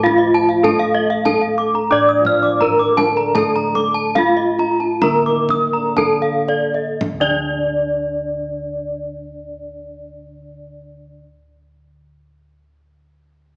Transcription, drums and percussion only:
0, 0, Header, 1, 2, 480
1, 0, Start_track
1, 0, Tempo, 608519
1, 502, Time_signature, 4, 2, 24, 8
1, 989, Tempo, 677201
1, 1949, Tempo, 747198
1, 2429, Tempo, 804290
1, 2909, Tempo, 869565
1, 3389, Tempo, 946372
1, 3869, Tempo, 1039861
1, 4349, Tempo, 1090909
1, 7229, End_track
2, 0, Start_track
2, 0, Title_t, "Kendang"
2, 48, Note_on_c, 9, 63, 32
2, 48, Note_on_c, 9, 64, 45
2, 126, Note_off_c, 9, 63, 0
2, 126, Note_off_c, 9, 64, 0
2, 508, Note_on_c, 9, 63, 38
2, 508, Note_on_c, 9, 64, 51
2, 587, Note_off_c, 9, 63, 0
2, 587, Note_off_c, 9, 64, 0
2, 628, Note_on_c, 9, 62, 17
2, 707, Note_off_c, 9, 62, 0
2, 990, Note_on_c, 9, 62, 16
2, 990, Note_on_c, 9, 63, 41
2, 990, Note_on_c, 9, 64, 40
2, 1061, Note_off_c, 9, 62, 0
2, 1061, Note_off_c, 9, 63, 0
2, 1061, Note_off_c, 9, 64, 0
2, 1227, Note_on_c, 9, 62, 16
2, 1297, Note_off_c, 9, 62, 0
2, 1333, Note_on_c, 9, 62, 16
2, 1404, Note_off_c, 9, 62, 0
2, 1457, Note_on_c, 9, 62, 16
2, 1528, Note_off_c, 9, 62, 0
2, 1694, Note_on_c, 9, 64, 47
2, 1765, Note_off_c, 9, 64, 0
2, 1821, Note_on_c, 9, 62, 20
2, 1892, Note_off_c, 9, 62, 0
2, 1948, Note_on_c, 9, 64, 46
2, 2012, Note_off_c, 9, 64, 0
2, 2187, Note_on_c, 9, 63, 57
2, 2251, Note_off_c, 9, 63, 0
2, 2308, Note_on_c, 9, 62, 18
2, 2372, Note_off_c, 9, 62, 0
2, 2427, Note_on_c, 9, 64, 65
2, 2487, Note_off_c, 9, 64, 0
2, 2548, Note_on_c, 9, 62, 18
2, 2608, Note_off_c, 9, 62, 0
2, 2665, Note_on_c, 9, 62, 20
2, 2665, Note_on_c, 9, 63, 38
2, 2725, Note_off_c, 9, 62, 0
2, 2725, Note_off_c, 9, 63, 0
2, 2907, Note_on_c, 9, 62, 18
2, 2907, Note_on_c, 9, 63, 50
2, 2907, Note_on_c, 9, 64, 43
2, 2963, Note_off_c, 9, 62, 0
2, 2963, Note_off_c, 9, 63, 0
2, 2963, Note_off_c, 9, 64, 0
2, 3144, Note_on_c, 9, 62, 19
2, 3199, Note_off_c, 9, 62, 0
2, 3263, Note_on_c, 9, 62, 16
2, 3318, Note_off_c, 9, 62, 0
2, 3382, Note_on_c, 9, 62, 15
2, 3382, Note_on_c, 9, 63, 41
2, 3433, Note_off_c, 9, 62, 0
2, 3433, Note_off_c, 9, 63, 0
2, 3621, Note_on_c, 9, 62, 21
2, 3621, Note_on_c, 9, 64, 44
2, 3672, Note_off_c, 9, 62, 0
2, 3672, Note_off_c, 9, 64, 0
2, 3864, Note_on_c, 9, 63, 40
2, 3864, Note_on_c, 9, 64, 41
2, 3910, Note_off_c, 9, 63, 0
2, 3910, Note_off_c, 9, 64, 0
2, 4102, Note_on_c, 9, 62, 15
2, 4148, Note_off_c, 9, 62, 0
2, 4222, Note_on_c, 9, 62, 16
2, 4268, Note_off_c, 9, 62, 0
2, 4346, Note_on_c, 9, 64, 82
2, 4390, Note_off_c, 9, 64, 0
2, 7229, End_track
0, 0, End_of_file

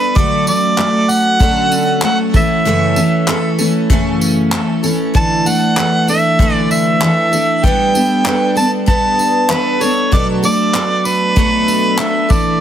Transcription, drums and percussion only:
0, 0, Header, 1, 2, 480
1, 0, Start_track
1, 0, Key_signature, 2, "major"
1, 0, Tempo, 622407
1, 126, Time_signature, 4, 2, 24, 8
1, 9722, End_track
2, 0, Start_track
2, 0, Title_t, "Drums"
2, 125, Note_on_c, 9, 36, 110
2, 202, Note_off_c, 9, 36, 0
2, 364, Note_on_c, 9, 54, 79
2, 441, Note_off_c, 9, 54, 0
2, 603, Note_on_c, 9, 39, 91
2, 680, Note_off_c, 9, 39, 0
2, 842, Note_on_c, 9, 54, 66
2, 919, Note_off_c, 9, 54, 0
2, 1082, Note_on_c, 9, 36, 109
2, 1159, Note_off_c, 9, 36, 0
2, 1323, Note_on_c, 9, 54, 65
2, 1400, Note_off_c, 9, 54, 0
2, 1558, Note_on_c, 9, 39, 125
2, 1635, Note_off_c, 9, 39, 0
2, 1805, Note_on_c, 9, 36, 99
2, 1806, Note_on_c, 9, 54, 66
2, 1882, Note_off_c, 9, 36, 0
2, 1883, Note_off_c, 9, 54, 0
2, 2285, Note_on_c, 9, 54, 75
2, 2362, Note_off_c, 9, 54, 0
2, 2528, Note_on_c, 9, 39, 106
2, 2605, Note_off_c, 9, 39, 0
2, 2766, Note_on_c, 9, 54, 73
2, 2843, Note_off_c, 9, 54, 0
2, 3006, Note_on_c, 9, 36, 111
2, 3083, Note_off_c, 9, 36, 0
2, 3250, Note_on_c, 9, 54, 68
2, 3327, Note_off_c, 9, 54, 0
2, 3488, Note_on_c, 9, 39, 117
2, 3565, Note_off_c, 9, 39, 0
2, 3730, Note_on_c, 9, 54, 66
2, 3807, Note_off_c, 9, 54, 0
2, 3970, Note_on_c, 9, 36, 103
2, 4047, Note_off_c, 9, 36, 0
2, 4212, Note_on_c, 9, 54, 75
2, 4289, Note_off_c, 9, 54, 0
2, 4452, Note_on_c, 9, 39, 91
2, 4529, Note_off_c, 9, 39, 0
2, 4690, Note_on_c, 9, 54, 60
2, 4768, Note_off_c, 9, 54, 0
2, 4929, Note_on_c, 9, 36, 124
2, 5006, Note_off_c, 9, 36, 0
2, 5174, Note_on_c, 9, 54, 70
2, 5251, Note_off_c, 9, 54, 0
2, 5410, Note_on_c, 9, 39, 106
2, 5487, Note_off_c, 9, 39, 0
2, 5651, Note_on_c, 9, 54, 66
2, 5729, Note_off_c, 9, 54, 0
2, 5890, Note_on_c, 9, 36, 109
2, 5967, Note_off_c, 9, 36, 0
2, 6131, Note_on_c, 9, 54, 78
2, 6208, Note_off_c, 9, 54, 0
2, 6368, Note_on_c, 9, 39, 104
2, 6445, Note_off_c, 9, 39, 0
2, 6607, Note_on_c, 9, 54, 66
2, 6684, Note_off_c, 9, 54, 0
2, 6846, Note_on_c, 9, 36, 108
2, 6923, Note_off_c, 9, 36, 0
2, 7088, Note_on_c, 9, 54, 65
2, 7166, Note_off_c, 9, 54, 0
2, 7323, Note_on_c, 9, 39, 113
2, 7400, Note_off_c, 9, 39, 0
2, 7566, Note_on_c, 9, 54, 64
2, 7643, Note_off_c, 9, 54, 0
2, 7808, Note_on_c, 9, 36, 102
2, 7885, Note_off_c, 9, 36, 0
2, 8048, Note_on_c, 9, 54, 75
2, 8125, Note_off_c, 9, 54, 0
2, 8285, Note_on_c, 9, 39, 93
2, 8362, Note_off_c, 9, 39, 0
2, 8524, Note_on_c, 9, 54, 62
2, 8601, Note_off_c, 9, 54, 0
2, 8765, Note_on_c, 9, 36, 116
2, 8842, Note_off_c, 9, 36, 0
2, 9008, Note_on_c, 9, 54, 65
2, 9085, Note_off_c, 9, 54, 0
2, 9243, Note_on_c, 9, 39, 117
2, 9320, Note_off_c, 9, 39, 0
2, 9485, Note_on_c, 9, 54, 66
2, 9487, Note_on_c, 9, 36, 113
2, 9562, Note_off_c, 9, 54, 0
2, 9564, Note_off_c, 9, 36, 0
2, 9722, End_track
0, 0, End_of_file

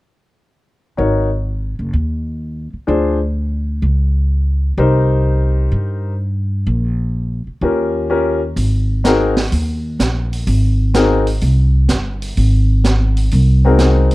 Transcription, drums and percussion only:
0, 0, Header, 1, 2, 480
1, 0, Start_track
1, 0, Tempo, 474684
1, 993, Time_signature, 4, 2, 24, 8
1, 14307, End_track
2, 0, Start_track
2, 0, Title_t, "Drums"
2, 8663, Note_on_c, 9, 46, 44
2, 8764, Note_off_c, 9, 46, 0
2, 9146, Note_on_c, 9, 38, 67
2, 9147, Note_on_c, 9, 42, 53
2, 9248, Note_off_c, 9, 38, 0
2, 9249, Note_off_c, 9, 42, 0
2, 9470, Note_on_c, 9, 38, 55
2, 9471, Note_on_c, 9, 46, 39
2, 9571, Note_off_c, 9, 38, 0
2, 9572, Note_off_c, 9, 46, 0
2, 9626, Note_on_c, 9, 46, 47
2, 9727, Note_off_c, 9, 46, 0
2, 10108, Note_on_c, 9, 38, 67
2, 10109, Note_on_c, 9, 42, 56
2, 10209, Note_off_c, 9, 38, 0
2, 10210, Note_off_c, 9, 42, 0
2, 10442, Note_on_c, 9, 46, 40
2, 10544, Note_off_c, 9, 46, 0
2, 10587, Note_on_c, 9, 46, 46
2, 10688, Note_off_c, 9, 46, 0
2, 11065, Note_on_c, 9, 38, 71
2, 11066, Note_on_c, 9, 42, 56
2, 11166, Note_off_c, 9, 38, 0
2, 11167, Note_off_c, 9, 42, 0
2, 11393, Note_on_c, 9, 46, 42
2, 11495, Note_off_c, 9, 46, 0
2, 11541, Note_on_c, 9, 46, 46
2, 11642, Note_off_c, 9, 46, 0
2, 12019, Note_on_c, 9, 38, 64
2, 12020, Note_on_c, 9, 42, 53
2, 12120, Note_off_c, 9, 38, 0
2, 12121, Note_off_c, 9, 42, 0
2, 12356, Note_on_c, 9, 46, 41
2, 12457, Note_off_c, 9, 46, 0
2, 12508, Note_on_c, 9, 46, 48
2, 12609, Note_off_c, 9, 46, 0
2, 12987, Note_on_c, 9, 38, 75
2, 12988, Note_on_c, 9, 42, 53
2, 13088, Note_off_c, 9, 38, 0
2, 13089, Note_off_c, 9, 42, 0
2, 13314, Note_on_c, 9, 46, 40
2, 13415, Note_off_c, 9, 46, 0
2, 13463, Note_on_c, 9, 46, 45
2, 13564, Note_off_c, 9, 46, 0
2, 13940, Note_on_c, 9, 38, 69
2, 13941, Note_on_c, 9, 42, 51
2, 14041, Note_off_c, 9, 38, 0
2, 14042, Note_off_c, 9, 42, 0
2, 14266, Note_on_c, 9, 46, 41
2, 14307, Note_off_c, 9, 46, 0
2, 14307, End_track
0, 0, End_of_file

